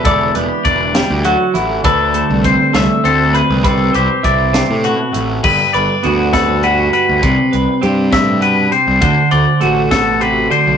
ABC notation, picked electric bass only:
X:1
M:6/8
L:1/16
Q:3/8=67
K:G
V:1 name="Picked electric bass" clef=bass
E,,,2 E,,, z E,,,3 D,,2 z A,,,2 | D,,3 C,,2 z C,, z D,,3 C,, | C,,2 C,, z C,,3 A,,2 z A,,,2 | G,,, z G,,, z D,,6- D,, D,, |
C,, z C,, z G,,6- G,, C,, | D,, z D,, z A,,,6- A,,, B,,, |]